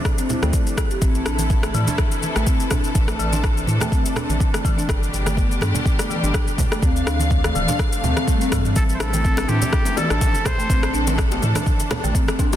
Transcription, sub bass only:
0.42 D2
1.01 A1
1.26 A1
1.74 A2
2.36 A1
2.95 A1
3.19 A1
3.67 A2
4.29 A1
4.89 G1
5.13 G1
5.62 G2
6.23 G1
6.82 D2
7.06 D2
7.55 D1
8.03 D2
8.52 G2
8.65 G2
8.76 A1
9.00 A1
9.49 A2
10.10 A1
10.70 A1
10.94 A1
11.42 A2
12.04 A1

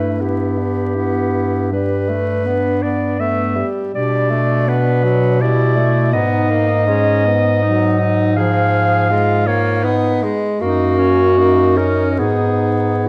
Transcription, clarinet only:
Already playing: B4
0.21 G4
1.73 B4
2.83 D5
3.20 E5
3.95 D5
4.69 B4
5.41 D5
6.13 D#5
8.37 F5
9.47 C#5
9.84 B4
10.61 F#4
11.77 A#4
12.11 A#4
12.19 G#4

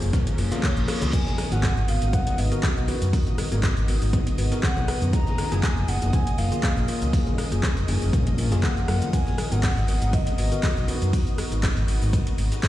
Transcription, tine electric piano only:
Already playing: A#3 F4 G#4
0.38 A#3 F4 A#4
0.52 A#3 F4 G#4
0.88 A#3 F4 A#4
1.13 B3 F#4 A#4
1.52 B3 F#4 A#4
1.88 B3 F#4 A#4
2.38 B3 F#4 B4
2.52 B3 F#4 A#4
2.88 B3 F#4 B4
3.13 B3 F#4 A#4
3.52 B3 F#4 A#4
3.88 B3 F#4 A#4
4.38 B3 F#4 B4
4.52 B3 F#4 A#4
4.88 B3 F#4 B4
5.13 A#3 F4 G#4
5.52 A#3 F4 G#4
5.88 A#3 F4 G#4
6.38 A#3 F4 A#4
6.52 A#3 F4 G#4
6.88 A#3 F4 A#4
7.13 A#3 F4 G#4
7.52 A#3 F4 G#4
7.88 A#3 F4 G#4
8.38 A#3 F4 A#4
8.52 A#3 F4 G#4
8.88 A#3 F4 A#4
9.13 B3 F#4 A#4
9.52 B3 F#4 A#4
9.88 B3 F#4 A#4
10.38 B3 F#4 B4
10.52 B3 F#4 A#4
10.88 B3 F#4 B4

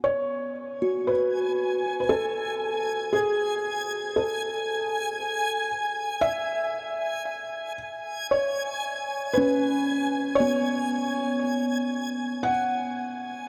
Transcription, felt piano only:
0.04 C#5
1.07 B4
2.00 B4
2.09 A4
3.13 G#4
4.16 A4
6.21 E5
8.31 C#5
9.33 B4
10.35 C#5
12.43 F#5

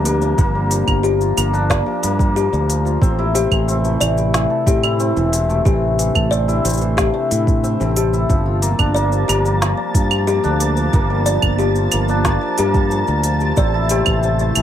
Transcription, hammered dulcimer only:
Already playing: F3 G3 C4 D4 F4
0.05 A#3
0.22 F3
0.38 A#3
0.55 G3
0.72 F3
1.04 F3
1.21 F4
1.37 A#3
1.53 D4
1.70 A#3
1.87 F3
2.03 A#3
2.19 G3
2.36 F3
2.69 F3
2.85 F4
3.02 C4
3.19 E4
3.34 C4
3.52 E3
3.68 C4
3.84 A3
4.01 E3
4.33 E3
4.50 A4
4.67 C4
4.84 E4
5.00 C4
5.16 E3
5.32 C4
5.49 A3
5.66 E3
5.99 E3
6.15 A4
6.31 C4
6.48 E4
6.65 C4
6.81 E3
6.98 C4
7.14 A3
7.31 E4
7.64 C4
7.80 C4
7.97 A4
8.13 E4
8.30 F3
8.46 F4
8.62 A#3
8.79 D4
8.95 A#3
9.12 F3
9.28 A#3
9.45 G3
9.61 F3
9.94 F3
10.11 F4
10.27 A#3
10.44 D4
10.60 A#3
10.77 F3
10.94 A#3
11.10 G3
11.27 F3
11.60 F3
11.76 F4
11.92 A#3
12.09 D4
12.26 A#3
12.43 F3
12.59 A#3
12.75 G3
12.92 F3
13.25 F3
13.41 F4
13.58 C4
13.74 E4
13.91 C4
14.07 E3
14.24 C4
14.40 A3
14.56 E3

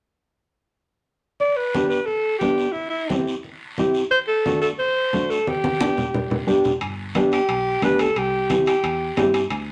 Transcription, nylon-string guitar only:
1.74 B3 D4 G4
2.42 B3 D4 G4
3.10 C4 E4 G4
3.79 C4 E4 G4
4.46 A3 D4 F#4
5.13 A3 D4 F#4
5.80 B3 D4 G4
6.47 B3 D4 G4 G5
7.15 B3 D4 G4
7.83 B3 D4 G4
8.50 C4 E4 G4
9.17 C4 E4 G4

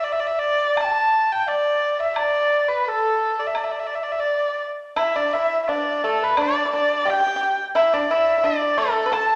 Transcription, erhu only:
0.03 D5
0.12 E5
0.19 D5
0.27 E5
0.39 D5
0.80 A5
1.32 G5
1.48 D5
1.99 E5
2.16 D5
2.68 B4
2.88 A4
3.39 D5
3.47 E5
3.56 D5
3.63 E5
3.71 D5
3.79 E5
3.86 D5
3.94 E5
4.03 D5
4.12 E5
4.20 D5
4.98 E5
5.16 D5
5.33 E5
5.63 E5
5.68 D5
6.04 A4
6.24 B4
6.41 D5
6.75 D5
7.09 G5
7.76 E5
7.93 D5
8.10 E5
8.45 D5
8.78 A4
9.13 A5

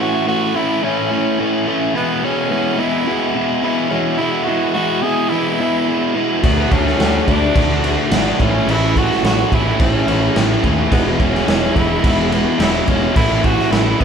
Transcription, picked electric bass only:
6.43 D2
6.71 D2
6.99 D2
7.28 D2
7.55 D2
8.11 G#1
8.40 A1
8.66 A1
9.23 A1
9.52 A1
9.80 A1
10.08 A1
10.36 A1
10.63 D#2
10.91 E1
11.20 E1
11.47 E1
11.76 E1
12.04 E1
12.60 E1
12.88 E1
13.16 A1
13.72 A1
14.01 A1

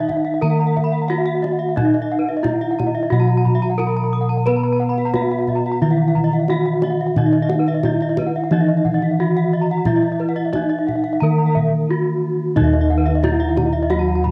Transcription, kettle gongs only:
Already playing: D#5
0.42 D#3
1.11 E4
1.78 D#4
2.45 E4
3.12 B2
3.79 E4
4.47 B4
5.13 E4
5.82 D#3
6.49 E4
7.17 D#4
7.84 E4
8.51 E3
9.19 E4
9.87 E4
10.54 E4
11.22 D#3
11.89 E4
12.56 D#4
12.61 D#2
13.23 E4

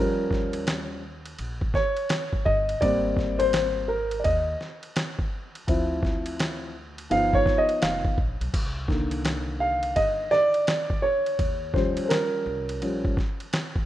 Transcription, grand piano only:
Already playing: F3 G3 C#4 A#4
1.75 C#5
2.45 D#5
2.81 G3 A#3 C4 D5
3.39 C5
3.88 A#4
4.20 D5
4.24 D#5
5.67 F3 C4 E4
7.10 F3 B3 D#4 F5
7.35 C#5
7.58 D#5
7.82 F5
8.88 D3 D#3 A#3
9.60 F5
9.96 D#5
10.31 D5
11.02 C#5
11.73 F3 G3 C#4 C5
12.05 A#4 C5
12.82 F3 G3 C#4

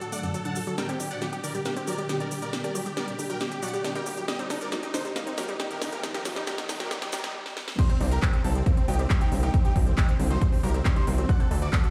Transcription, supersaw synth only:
0.01 A4
0.12 D5 F#5
0.23 A4
0.34 A4
0.45 F#5 A5
0.56 A4
0.67 A4
0.78 A#4 G5
0.89 G4
1.00 G4
1.11 D5 F#5
1.22 G4
1.33 G4
1.44 A#4 D5
1.55 G4
1.66 G4
1.76 G4
1.87 A#4 D5
1.98 G4
2.09 G4
2.20 A#4 D5
2.31 G4
2.42 A#4 D5
2.53 G4
2.64 A#4 D5
2.75 G4
2.86 G4
2.97 A#4 D5
3.08 G4
3.19 G4
3.30 A#4 G5
3.41 G4
3.52 G4
3.62 D5 F#5
3.73 G4
3.84 G4
3.95 A#4 G5
4.06 G4
4.17 G4
4.28 G4 D#5
4.39 D#4
4.50 D#4
4.61 A#4 D5
4.72 D#4
4.83 D#4
4.94 D#4 C5
5.05 D#4
5.16 D#4
5.27 D#4
5.38 G4 A#4
5.49 D#4
5.60 D#4
5.70 G4 A#4
5.81 D#4
5.92 G4 A#4
6.03 D#4
6.14 G4 A#4
6.25 D#4
6.36 D#4
6.47 G4 A#4
6.58 D#4
6.69 D#4
6.80 G4 A#4
6.91 D#4
7.02 D#4
7.13 G4 A#4
7.24 D#4
7.79 D#4 C5
7.90 C4
8.01 C4
8.11 G4 A#4
8.22 C4
8.33 C4
8.44 C4 A4
8.55 C4
8.66 C4
8.77 C4
8.88 D#4 G4
8.99 C4
9.10 C4
9.21 D#4 G4
9.32 C4
9.43 D#4 G4
9.54 C4
9.65 D#4 G4
9.76 C4
9.87 C4
9.98 D#4 G4
10.09 C4
10.20 C4
10.31 D#4 C5
10.52 C4
10.63 G4 A#4
10.74 C4
10.85 C4
10.96 D#4 C5
11.07 C4
11.18 C4
11.29 D5 F#5
11.40 A4
11.51 A4
11.62 F#4 D5
11.73 A4
11.84 A4

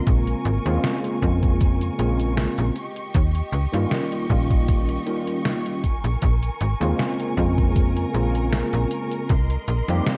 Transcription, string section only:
Already playing: A#4
0.07 G#5 C#6
2.77 G4 D#5
5.85 A#4 G#5
9.30 D#5 C6

